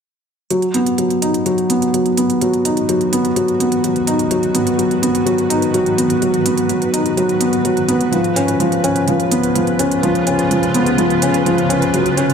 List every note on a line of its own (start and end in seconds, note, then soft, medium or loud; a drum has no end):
0.50 8.09 G#2 medium
0.50 8.09 D#3 medium
0.50 0.64 F#3 medium
0.50 8.09 F#4 medium
0.50 11.90 B4 medium
0.50 closed hi-hat soft
0.62 closed hi-hat soft
0.74 0.97 B3 medium
0.74 closed hi-hat medium
0.86 closed hi-hat soft
0.98 1.21 F#3 medium
0.98 closed hi-hat soft
1.10 closed hi-hat soft
1.22 1.45 D#4 medium
1.22 closed hi-hat medium
1.34 closed hi-hat soft
1.46 1.69 F#3 medium
1.46 closed hi-hat soft
1.58 closed hi-hat soft
1.70 1.84 B3 medium
1.70 closed hi-hat medium
1.82 closed hi-hat soft
1.94 2.07 F#3 medium
1.94 closed hi-hat soft
2.06 closed hi-hat soft
2.17 2.40 B3 medium
2.17 closed hi-hat medium
2.30 closed hi-hat soft
2.41 2.64 F#3 medium
2.41 closed hi-hat soft
2.54 closed hi-hat soft
2.65 2.88 D#4 medium
2.65 closed hi-hat medium
2.77 closed hi-hat soft
2.89 3.12 F#3 medium
2.89 closed hi-hat soft
3.01 closed hi-hat soft
3.13 3.26 B3 medium
3.13 closed hi-hat medium
3.25 closed hi-hat soft
3.36 3.50 F#3 medium
3.36 closed hi-hat soft
3.48 closed hi-hat soft
3.60 3.83 B3 medium
3.60 closed hi-hat medium
3.72 closed hi-hat soft
3.84 4.07 F#3 medium
3.84 closed hi-hat soft
3.96 closed hi-hat soft
4.07 4.30 D#4 medium
4.07 closed hi-hat medium
4.19 closed hi-hat soft
4.31 4.54 F#3 medium
4.31 closed hi-hat soft
4.43 closed hi-hat soft
4.54 4.69 B3 medium
4.54 closed hi-hat medium
4.67 closed hi-hat soft
4.78 4.92 F#3 medium
4.78 closed hi-hat soft
4.91 closed hi-hat soft
5.02 5.25 B3 medium
5.02 closed hi-hat medium
5.15 closed hi-hat soft
5.26 5.49 F#3 medium
5.26 closed hi-hat soft
5.38 closed hi-hat soft
5.50 5.73 D#4 medium
5.50 closed hi-hat medium
5.62 closed hi-hat soft
5.74 5.97 F#3 medium
5.74 closed hi-hat soft
5.86 closed hi-hat soft
5.98 6.12 B3 medium
5.98 closed hi-hat medium
6.10 closed hi-hat soft
6.22 6.36 F#3 medium
6.22 closed hi-hat soft
6.34 closed hi-hat soft
6.46 6.69 B3 medium
6.46 closed hi-hat medium
6.58 closed hi-hat soft
6.69 6.92 F#3 medium
6.69 closed hi-hat soft
6.82 closed hi-hat soft
6.93 7.16 D#4 medium
6.93 closed hi-hat medium
7.06 closed hi-hat soft
7.17 7.40 F#3 medium
7.17 closed hi-hat soft
7.29 closed hi-hat soft
7.41 7.55 B3 medium
7.41 closed hi-hat medium
7.53 closed hi-hat soft
7.65 7.79 F#3 medium
7.65 closed hi-hat soft
7.77 closed hi-hat soft
7.88 8.11 B3 medium
7.88 closed hi-hat medium
8.01 closed hi-hat soft
8.12 11.90 C#2 medium
8.12 11.90 C#3 medium
8.12 8.35 F3 medium
8.12 11.90 F4 medium
8.12 closed hi-hat soft
8.24 closed hi-hat soft
8.36 8.59 C#4 medium
8.36 closed hi-hat medium
8.48 closed hi-hat soft
8.60 8.83 F3 medium
8.60 closed hi-hat soft
8.72 closed hi-hat soft
8.84 8.98 C#4 medium
8.84 closed hi-hat medium
8.96 closed hi-hat soft
9.08 9.22 F3 medium
9.08 closed hi-hat soft
9.20 closed hi-hat soft
9.31 9.54 B3 medium
9.31 closed hi-hat medium
9.43 closed hi-hat soft
9.55 9.78 F3 medium
9.55 closed hi-hat soft
9.67 closed hi-hat soft
9.79 10.02 C#4 medium
9.79 closed hi-hat medium
9.91 closed hi-hat soft
10.03 10.26 F3 medium
10.03 closed hi-hat soft
10.15 closed hi-hat soft
10.27 10.41 C#4 medium
10.27 closed hi-hat medium
10.39 closed hi-hat soft
10.51 10.64 F3 medium
10.51 closed hi-hat soft
10.63 closed hi-hat soft
10.74 10.97 B3 medium
10.74 closed hi-hat medium
10.86 closed hi-hat soft
10.98 11.21 F3 medium
10.98 closed hi-hat soft
11.10 closed hi-hat soft
11.22 11.45 C#4 medium
11.22 closed hi-hat medium
11.34 closed hi-hat soft
11.46 11.69 F3 medium
11.46 closed hi-hat soft
11.58 closed hi-hat soft
11.69 11.83 C#4 medium
11.69 closed hi-hat medium
11.82 closed hi-hat soft
11.93 12.34 D#2 medium
11.93 12.34 D#3 medium
11.93 12.07 F#3 medium
11.93 12.34 F#4 medium
11.93 12.34 C#5 medium
11.93 closed hi-hat soft
12.06 closed hi-hat soft
12.17 12.34 C#4 medium
12.17 closed hi-hat medium
12.30 closed hi-hat soft